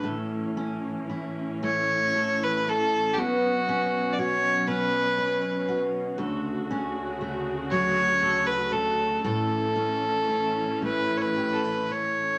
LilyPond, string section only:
\new Staff \with { instrumentName = "String section" } { \clef bass \time 6/8 \key a \major \tempo 4. = 39 << { cis'2.~ | cis'2. | fis'2. | cis'2. | } \\ { <a, e>2. | <b, fis>2. | <d, cis>2. | <a, e>2. | } >> }